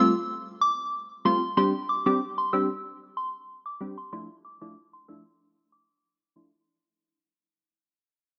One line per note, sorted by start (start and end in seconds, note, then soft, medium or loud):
0.00 0.13 G3 medium
0.00 0.13 A3 medium
0.00 0.13 C4 medium
0.00 0.13 F4 medium
0.61 0.72 D6 medium
1.25 1.41 G3 medium
1.25 1.41 A3 medium
1.25 1.41 C4 medium
1.25 1.41 F4 medium
1.25 1.36 C6 medium
1.57 1.73 G3 medium
1.57 1.73 C4 medium
1.57 1.73 D4 medium
1.57 1.73 G4 loud
1.57 1.68 C6 loud
1.89 2.00 D6 medium
2.06 2.20 G3 medium
2.06 2.20 C4 medium
2.06 2.20 D4 medium
2.06 2.20 G4 medium
2.06 2.16 D6 medium
2.38 2.47 C6 medium
2.53 2.68 G3 medium
2.53 2.69 C4 medium
2.53 2.69 D4 medium
2.53 2.69 G4 medium
2.53 2.64 E6 medium
3.17 3.28 C6 medium
3.66 3.75 D6 medium
3.80 3.96 G3 medium
3.80 3.96 C4 medium
3.80 3.96 D4 medium
3.80 3.96 G4 medium
3.98 4.07 C6 medium
4.12 4.28 F3 medium
4.12 4.28 A3 medium
4.12 4.28 D4 medium
4.12 4.28 E4 loud
4.12 4.23 C6 medium
4.45 4.55 D6 medium
4.61 4.75 F3 medium
4.61 4.75 A3 medium
4.61 4.75 D4 medium
4.61 4.75 E4 medium
4.61 4.71 D6 medium
4.93 5.03 C6 medium
5.08 5.24 F3 medium
5.08 5.24 A3 medium
5.08 5.24 D4 medium
5.08 5.24 E4 medium
5.08 5.19 E6 medium
5.72 5.83 D6 medium
6.36 6.51 F3 medium
6.36 6.52 A3 medium
6.36 6.52 D4 medium
6.36 6.52 E4 medium
6.36 6.47 C6 medium